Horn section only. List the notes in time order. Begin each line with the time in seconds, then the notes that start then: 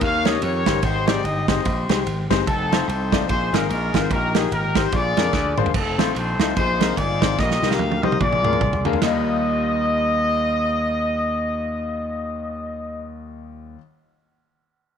0.02 A#4 C#5 F5
0.27 D#5
0.43 G4 A#4 C#5
0.83 D#4 G4 C5
1.08 D5
1.24 D#5
1.49 G4 C5 D#5
2.48 C4 D#4 A4
2.88 D#4 A4 C5
3.29 D#4 G#4 C5
3.54 A#4
3.70 D#4 F4 A#4
4.02 C5
4.12 D#4 G4 A#4
4.36 G#4
4.53 D#4 G4 A#4
4.85 C5
4.94 F4 G#4 D5
5.76 C4 D#4 A4
6.17 D#4 A4 C5
6.56 D#4 G#4 C5
6.97 F4 G#4 D5
7.39 G4 A#4 D#5
7.71 A#4 F5
8.03 D#5
8.22 F4 G#4 D5
9.02 D#5